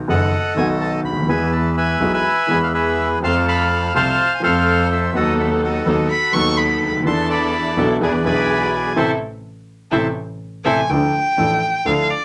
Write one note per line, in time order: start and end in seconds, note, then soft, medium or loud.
0.08 0.28 F#1 medium
0.08 0.28 F#2 medium
0.08 0.28 D#3 medium
0.08 0.28 A3 medium
0.08 0.28 B3 medium
0.08 0.28 F#4 medium
0.08 1.01 A4 medium
0.08 1.00 D#5 medium
0.08 0.53 F#5 medium
0.54 1.03 B1 medium
0.54 1.25 B1 medium
0.54 1.25 B2 medium
0.54 1.24 D#3 medium
0.54 1.24 A3 medium
0.54 1.25 B3 medium
0.54 0.68 G#5 medium
0.59 1.26 F#4 medium
0.82 0.92 A5 medium
1.03 1.27 D2 medium
1.03 1.29 B5 medium
1.09 1.16 C#2 soft
1.16 1.22 D2 medium
1.21 1.28 D#2 medium
1.27 1.97 E2 medium
1.27 1.97 E3 medium
1.27 1.96 G#3 medium
1.27 1.97 B3 medium
1.27 1.97 G#4 medium
1.27 1.76 B4 medium
1.27 1.76 E5 medium
1.27 1.51 G#5 medium
1.52 1.75 A5 medium
1.77 2.12 B4 medium
1.77 2.12 E5 medium
1.77 2.13 G#5 medium
2.00 2.20 B1 medium
2.00 2.21 B1 medium
2.00 2.21 B2 medium
2.00 2.21 E3 medium
2.00 2.21 G#3 medium
2.00 2.21 B3 medium
2.00 2.21 G#4 medium
2.13 2.72 B4 medium
2.13 2.73 E5 medium
2.13 2.59 G#5 medium
2.47 3.18 E2 medium
2.47 3.18 E3 medium
2.47 3.18 G#3 medium
2.47 3.19 B3 medium
2.47 3.19 G#4 medium
2.63 2.68 F5 medium
2.74 3.19 G#4 medium
2.74 3.19 B4 medium
2.74 3.08 E5 medium
3.20 3.91 F2 medium
3.20 3.22 F3 medium
3.20 3.91 F3 medium
3.20 3.91 A3 medium
3.20 3.91 C4 medium
3.20 3.91 F4 medium
3.20 3.91 A4 medium
3.20 3.46 F5 medium
3.20 3.95 A5 medium
3.25 3.92 A4 medium
3.25 3.35 C6 medium
3.48 3.94 F5 medium
3.48 3.92 B5 medium
3.94 4.14 C2 medium
3.94 4.15 C2 medium
3.94 4.15 C3 medium
3.94 4.15 F3 medium
3.94 4.15 A3 medium
3.94 4.14 C4 medium
3.94 4.15 C4 medium
3.94 4.14 F4 medium
3.94 4.15 A4 medium
3.94 4.42 C5 medium
3.94 4.42 F5 medium
3.94 4.34 A5 medium
4.35 4.42 G#5 medium
4.40 5.11 F2 medium
4.40 5.11 F3 medium
4.40 5.11 A3 medium
4.40 5.11 C4 medium
4.40 5.11 F4 medium
4.40 5.11 A4 medium
4.40 5.12 A4 medium
4.40 5.11 C5 medium
4.40 4.88 F5 medium
4.92 5.16 E5 medium
5.13 5.82 D#2 medium
5.13 5.83 D#2 medium
5.13 5.83 D#3 medium
5.13 5.82 F#3 medium
5.13 5.82 B3 medium
5.13 5.83 B3 medium
5.13 5.83 D#4 medium
5.13 5.62 F#4 medium
5.13 5.83 A4 medium
5.13 5.62 A4 medium
5.13 5.84 A4 medium
5.13 5.37 D#5 medium
5.40 5.50 E5 medium
5.63 6.54 F#4 medium
5.63 6.54 A4 medium
5.63 6.08 D#5 medium
5.85 6.06 D#2 medium
5.85 6.06 D#3 medium
5.85 6.06 F#3 medium
5.85 6.06 B3 medium
5.85 6.06 D#4 medium
5.85 6.06 A4 medium
6.10 6.35 B5 medium
6.32 6.81 D#2 medium
6.32 6.99 D#2 medium
6.32 7.02 D#3 medium
6.32 7.01 F#3 medium
6.32 7.02 B3 medium
6.32 7.02 D#4 medium
6.32 7.02 A4 medium
6.32 7.03 A4 medium
6.32 6.59 C#6 loud
6.57 6.93 B5 medium
6.82 7.05 D2 medium
6.88 6.94 C#2 soft
6.94 7.00 D2 medium
7.00 7.06 D#2 medium
7.05 7.73 E2 medium
7.05 7.74 E2 medium
7.05 7.74 E3 medium
7.05 7.73 B3 medium
7.05 7.73 D4 medium
7.05 7.74 D4 medium
7.05 7.73 E4 medium
7.05 7.74 A4 medium
7.05 7.75 A4 medium
7.05 7.77 A5 medium
7.05 7.28 C6 medium
7.30 7.97 D5 medium
7.30 7.79 B5 loud
7.76 7.97 B1 medium
7.76 7.97 B2 medium
7.76 7.97 E3 medium
7.76 7.97 B3 medium
7.76 7.97 D4 medium
7.76 7.97 E4 medium
7.76 7.97 A4 medium
7.76 7.89 A5 medium
8.00 8.21 E2 medium
8.00 8.21 E3 medium
8.00 8.21 B3 medium
8.00 8.20 D4 medium
8.00 8.21 D4 medium
8.00 8.21 E4 medium
8.00 8.21 G#4 medium
8.00 8.93 B4 medium
8.00 8.25 D5 medium
8.00 8.13 G#5 medium
8.23 8.93 B1 medium
8.23 8.93 B2 medium
8.23 8.92 E3 medium
8.23 8.92 B3 medium
8.23 8.92 D4 medium
8.23 8.93 D4 medium
8.23 8.92 E4 medium
8.23 8.92 G#4 medium
8.23 8.93 D5 medium
8.23 8.72 G#5 medium
8.23 8.74 B5 medium
8.27 8.94 G#4 medium
8.74 8.97 G#5 medium
8.95 9.14 A1 medium
8.95 9.11 C3 medium
8.95 9.11 E3 medium
8.95 9.11 A3 medium
8.95 9.11 C4 medium
8.95 9.11 E4 medium
8.95 9.11 A4 medium
8.95 9.12 C5 medium
8.95 9.12 E5 medium
8.95 9.12 A5 medium
9.91 10.10 A1 medium
9.91 10.07 C3 medium
9.91 10.07 E3 medium
9.91 10.08 A3 medium
9.91 10.07 C4 medium
9.91 10.07 E4 medium
9.91 10.07 A4 medium
9.91 10.07 C5 medium
9.91 10.08 E5 medium
9.91 10.08 A5 medium
10.64 10.83 A1 medium
10.64 10.81 C3 medium
10.64 10.81 E3 medium
10.64 10.81 A3 medium
10.64 10.80 C4 medium
10.64 10.80 E4 medium
10.64 10.80 A4 medium
10.64 10.81 C5 medium
10.64 10.81 E5 medium
10.64 10.91 G#5 medium
10.64 10.81 A5 medium
10.89 11.10 D2 medium
10.89 11.10 D3 medium
10.89 11.10 F3 medium
10.89 11.10 D4 medium
10.89 11.10 E4 medium
10.89 11.10 A4 medium
10.89 11.87 G5 medium
11.37 11.58 A1 medium
11.37 11.58 A2 medium
11.37 11.58 F3 medium
11.37 11.58 D4 medium
11.37 11.58 E4 medium
11.37 11.58 A4 medium
11.85 12.06 D2 medium
11.85 12.06 D3 medium
11.85 12.06 F3 medium
11.85 12.06 D4 medium
11.85 12.06 E4 medium
11.85 12.06 A4 medium
11.85 12.12 F5 medium
12.11 12.25 D5 medium